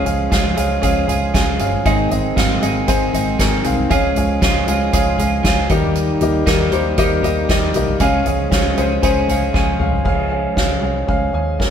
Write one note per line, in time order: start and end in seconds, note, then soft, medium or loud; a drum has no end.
0.00 0.31 C#3 medium
0.00 0.53 C#3 medium
0.00 0.30 F3 medium
0.00 1.84 F3 medium
0.00 0.31 G#3 medium
0.00 5.66 G#3 medium
0.00 0.05 C#4 loud
0.00 1.83 C#4 medium
0.00 0.31 F4 medium
0.00 0.06 G#4 medium
0.00 0.32 G#4 loud
0.00 0.06 F5 loud
0.05 0.28 C#2 medium
0.05 0.27 C#4 medium
0.05 0.28 G#4 medium
0.05 0.28 F5 loud
0.05 closed hi-hat medium
0.05 floor tom medium
0.30 0.53 C#2 medium
0.30 0.57 F3 medium
0.30 0.57 G#3 medium
0.30 0.53 C#4 medium
0.30 0.57 F4 medium
0.30 0.53 G#4 medium
0.30 0.55 G#4 medium
0.30 0.53 F5 medium
0.30 kick loud
0.30 snare loud
0.30 closed hi-hat medium
0.56 0.79 C#2 medium
0.56 0.82 G#3 soft
0.56 0.79 C#4 medium
0.56 0.82 F4 medium
0.56 0.83 G#4 medium
0.56 0.79 G#4 medium
0.56 0.79 F5 medium
0.56 closed hi-hat medium
0.82 1.04 C#2 medium
0.82 1.08 F3 medium
0.82 1.09 G#3 medium
0.82 1.04 C#4 loud
0.82 1.08 F4 medium
0.82 1.04 G#4 medium
0.82 1.07 G#4 medium
0.82 1.05 F5 loud
0.82 kick loud
0.82 closed hi-hat loud
1.07 1.30 C#2 medium
1.07 1.33 G#3 soft
1.07 1.30 C#4 medium
1.07 1.34 F4 medium
1.07 1.30 G#4 medium
1.07 1.34 G#4 medium
1.07 1.30 F5 medium
1.07 closed hi-hat medium
1.07 floor tom medium
1.34 1.56 C#2 medium
1.34 1.85 F3 medium
1.34 1.86 G#3 medium
1.34 1.56 C#4 medium
1.34 1.86 F4 medium
1.34 1.56 G#4 medium
1.34 1.86 G#4 medium
1.34 1.56 F5 medium
1.34 kick loud
1.34 snare medium
1.34 closed hi-hat medium
1.59 1.81 G1 medium
1.59 1.82 C#4 medium
1.59 1.82 G#4 medium
1.59 1.82 F5 medium
1.59 closed hi-hat medium
1.73 floor tom medium
1.85 2.07 G#1 loud
1.85 2.37 G#2 medium
1.85 2.59 G#2 medium
1.85 2.37 D#3 medium
1.85 3.89 D#3 medium
1.85 2.36 G#3 medium
1.85 2.07 C4 loud
1.85 3.89 C4 medium
1.85 2.36 C4 medium
1.85 2.37 D#4 medium
1.85 2.07 G#4 loud
1.85 2.38 G#4 medium
1.85 2.08 D#5 loud
1.85 kick loud
1.85 closed hi-hat medium
2.10 2.32 G#1 medium
2.10 2.32 C4 medium
2.10 2.33 G#4 medium
2.10 2.33 D#5 medium
2.10 closed hi-hat medium
2.10 floor tom medium
2.35 2.58 G#1 loud
2.35 2.62 G#3 medium
2.35 2.58 C4 medium
2.35 2.62 C4 medium
2.35 2.62 D#4 medium
2.35 2.58 G#4 medium
2.35 2.61 G#4 medium
2.35 2.58 F5 medium
2.35 kick loud
2.35 snare loud
2.35 closed hi-hat medium
2.61 2.84 G#1 medium
2.61 2.87 G#3 soft
2.61 2.84 C4 medium
2.61 2.87 C4 medium
2.61 2.88 D#4 medium
2.61 2.88 G#4 medium
2.61 2.84 G#4 medium
2.61 2.84 D#5 loud
2.61 closed hi-hat medium
2.87 3.09 G#1 loud
2.87 3.14 G#3 medium
2.87 3.09 C4 loud
2.87 3.14 C4 medium
2.87 3.13 D#4 medium
2.87 3.10 G#4 medium
2.87 3.12 G#4 medium
2.87 3.10 C5 loud
2.87 kick loud
2.87 closed hi-hat loud
3.13 3.35 G#1 medium
3.13 3.37 G#3 soft
3.13 3.35 C4 medium
3.13 3.38 C4 soft
3.13 3.39 D#4 medium
3.13 3.39 G#4 medium
3.13 3.35 G#4 medium
3.13 3.36 D#5 medium
3.13 closed hi-hat medium
3.13 floor tom medium
3.39 3.60 G#1 medium
3.39 3.90 G#3 medium
3.39 3.61 C4 medium
3.39 3.90 C4 medium
3.39 3.91 D#4 medium
3.39 3.61 G#4 medium
3.39 3.90 G#4 medium
3.39 3.61 A#4 loud
3.39 kick loud
3.39 snare loud
3.39 closed hi-hat medium
3.64 3.86 C2 medium
3.64 3.86 C4 medium
3.64 3.86 G#4 medium
3.64 3.87 F5 medium
3.64 closed hi-hat medium
3.64 floor tom medium
3.78 floor tom medium
3.90 4.12 C#2 loud
3.90 4.42 C#3 medium
3.90 4.63 C#3 medium
3.90 5.68 F3 medium
3.90 4.40 F3 medium
3.90 4.41 G#3 loud
3.90 4.12 C#4 loud
3.90 5.68 C#4 medium
3.90 4.41 F4 medium
3.90 4.12 G#4 loud
3.90 4.42 G#4 medium
3.90 4.12 F5 loud
3.90 kick loud
3.90 closed hi-hat medium
4.16 4.37 C#2 loud
4.16 4.38 C#4 medium
4.16 4.39 G#4 medium
4.16 4.39 F5 medium
4.16 closed hi-hat medium
4.16 floor tom medium
4.41 4.63 C#2 medium
4.41 4.67 F3 medium
4.41 4.68 G#3 medium
4.41 4.64 C#4 medium
4.41 4.67 F4 medium
4.41 4.64 G#4 medium
4.41 4.66 G#4 medium
4.41 4.64 F5 loud
4.41 kick loud
4.41 snare loud
4.41 closed hi-hat medium
4.67 4.88 C#2 medium
4.67 4.92 G#3 soft
4.67 4.89 C#4 medium
4.67 4.92 F4 medium
4.67 4.93 G#4 medium
4.67 4.89 G#4 medium
4.67 4.90 F5 medium
4.67 closed hi-hat medium
4.92 5.15 C#2 loud
4.92 5.18 F3 medium
4.92 5.18 G#3 medium
4.92 5.15 C#4 loud
4.92 5.18 F4 medium
4.92 5.15 G#4 medium
4.92 5.17 G#4 medium
4.92 5.15 F5 loud
4.92 kick loud
4.92 closed hi-hat loud
5.18 5.40 C#2 medium
5.18 5.43 G#3 soft
5.18 5.41 C#4 medium
5.18 5.44 F4 medium
5.18 5.44 G#4 medium
5.18 5.41 G#4 medium
5.18 5.41 F5 medium
5.18 closed hi-hat medium
5.18 floor tom medium
5.43 5.65 C#2 medium
5.43 5.69 F3 medium
5.43 5.70 G#3 medium
5.43 5.66 C#4 medium
5.43 5.69 F4 medium
5.43 5.66 G#4 medium
5.43 5.69 G#4 medium
5.43 5.67 F5 loud
5.43 kick loud
5.43 snare loud
5.43 closed hi-hat medium
5.69 6.12 D#2 loud
5.69 6.43 D#3 medium
5.69 6.45 D#3 medium
5.69 7.99 G3 medium
5.69 6.45 A#3 medium
5.69 6.14 A#3 medium
5.69 7.99 A#3 medium
5.69 6.46 D#4 medium
5.69 7.99 D#4 medium
5.69 6.47 G4 medium
5.69 6.14 G4 medium
5.69 6.14 D#5 loud
5.69 kick loud
5.69 closed hi-hat medium
5.82 floor tom medium
5.95 closed hi-hat medium
6.21 6.42 D#2 loud
6.21 6.43 A#3 medium
6.21 6.43 G4 medium
6.21 6.43 D#5 loud
6.21 closed hi-hat medium
6.21 floor tom medium
6.46 6.68 D#2 loud
6.46 6.72 D#3 medium
6.46 6.72 A#3 medium
6.46 6.68 A#3 medium
6.46 6.72 D#4 medium
6.46 6.69 G4 medium
6.46 6.71 G4 medium
6.46 6.69 A#4 medium
6.46 kick loud
6.46 snare loud
6.46 closed hi-hat medium
6.72 6.93 D#2 medium
6.72 6.94 A#3 medium
6.72 6.97 A#3 medium
6.72 6.97 D#4 medium
6.72 6.98 G4 medium
6.72 6.94 G4 medium
6.72 6.94 C5 medium
6.72 closed hi-hat medium
6.97 7.19 D#2 loud
6.97 7.23 D#3 medium
6.97 7.20 A#3 loud
6.97 7.24 A#3 medium
6.97 7.23 D#4 medium
6.97 7.20 G4 loud
6.97 7.22 G4 medium
6.97 7.20 D#5 loud
6.97 kick loud
6.97 closed hi-hat loud
7.23 7.45 D#2 medium
7.23 7.46 A#3 medium
7.23 7.48 A#3 soft
7.23 7.49 D#4 medium
7.23 7.49 G4 medium
7.23 7.46 G4 medium
7.23 7.46 D#5 medium
7.23 closed hi-hat medium
7.23 floor tom medium
7.49 7.71 D#2 medium
7.49 8.00 D#3 medium
7.49 7.71 A#3 medium
7.49 8.00 A#3 medium
7.49 8.01 D#4 medium
7.49 7.71 G4 medium
7.49 8.01 G4 medium
7.49 7.72 D#5 loud
7.49 kick loud
7.49 snare loud
7.49 closed hi-hat medium
7.74 7.96 C2 medium
7.74 7.97 A#3 medium
7.74 7.97 G4 medium
7.74 7.97 D#5 medium
7.74 closed hi-hat medium
7.74 floor tom medium
7.87 floor tom medium
8.00 8.22 C#2 loud
8.00 8.52 C#3 medium
8.00 8.74 C#3 medium
8.00 8.51 F3 medium
8.00 10.03 F3 medium
8.00 10.04 G#3 medium
8.00 8.52 G#3 medium
8.00 8.22 C#4 loud
8.00 10.03 C#4 medium
8.00 8.52 C#4 medium
8.00 8.22 G#4 loud
8.00 8.52 G#4 loud
8.00 8.23 F5 loud
8.00 kick loud
8.00 closed hi-hat medium
8.25 8.47 C#2 medium
8.25 8.48 C#4 medium
8.25 8.48 G#4 medium
8.25 8.48 F5 loud
8.25 closed hi-hat medium
8.25 floor tom medium
8.50 8.73 C#2 medium
8.50 8.77 F3 medium
8.50 8.78 G#3 medium
8.50 8.73 C#4 medium
8.50 8.77 C#4 medium
8.50 8.73 G#4 medium
8.50 8.76 G#4 medium
8.50 8.73 F5 medium
8.50 kick loud
8.50 snare loud
8.50 closed hi-hat medium
8.77 8.99 C#2 medium
8.77 9.02 G#3 soft
8.77 8.99 C#4 medium
8.77 9.03 C#4 medium
8.77 9.03 G#4 medium
8.77 8.99 G#4 medium
8.77 8.99 C5 loud
8.77 closed hi-hat medium
9.02 9.24 C#2 loud
9.02 9.29 F3 medium
9.02 9.29 G#3 medium
9.02 9.25 C#4 medium
9.02 9.29 C#4 medium
9.02 9.25 G#4 medium
9.02 9.28 G#4 medium
9.02 9.25 C5 loud
9.02 kick loud
9.02 closed hi-hat loud
9.28 9.49 C#2 medium
9.28 9.54 G#3 soft
9.28 9.50 C#4 medium
9.28 9.54 C#4 medium
9.28 9.51 G#4 medium
9.28 9.55 G#4 medium
9.28 9.51 F5 medium
9.28 closed hi-hat medium
9.28 floor tom medium
9.53 9.76 C#2 medium
9.53 10.57 F3 medium
9.53 10.57 G#3 medium
9.53 9.75 C#4 medium
9.53 10.57 C#4 medium
9.53 9.76 G#4 medium
9.53 10.57 G#4 medium
9.53 9.76 F5 medium
9.53 kick loud
9.53 snare medium
9.79 10.01 C2 medium
9.79 10.01 C#4 medium
9.79 10.02 G#4 medium
9.79 10.02 F5 medium
9.79 mid tom medium
9.93 floor tom medium
10.04 10.48 C#2 medium
10.04 10.78 C#3 medium
10.04 11.70 F3 medium
10.04 11.70 G#3 medium
10.04 10.27 C#4 medium
10.04 11.70 C#4 medium
10.04 10.27 G#4 medium
10.04 10.27 F5 loud
10.04 kick loud
10.04 crash medium
10.30 10.52 C#4 medium
10.30 10.53 G#4 medium
10.30 10.53 F5 medium
10.56 10.78 C#2 medium
10.56 10.78 C#4 medium
10.56 10.78 G#4 medium
10.56 10.78 F5 medium
10.56 kick medium
10.56 snare loud
10.82 11.03 C2 medium
10.82 11.04 C#4 medium
10.82 11.04 G#4 medium
10.82 11.04 F5 medium
11.07 11.30 C#2 medium
11.07 11.29 C#4 medium
11.07 11.30 G#4 medium
11.07 11.30 F5 medium
11.07 kick loud
11.33 11.60 D#2 medium
11.33 11.55 C#4 medium
11.33 11.55 G#4 medium
11.33 11.56 G#5 medium
11.59 11.70 C#2 medium
11.59 11.70 C#4 medium
11.59 11.70 G#4 medium
11.59 11.70 A#4 medium
11.59 kick medium
11.59 snare medium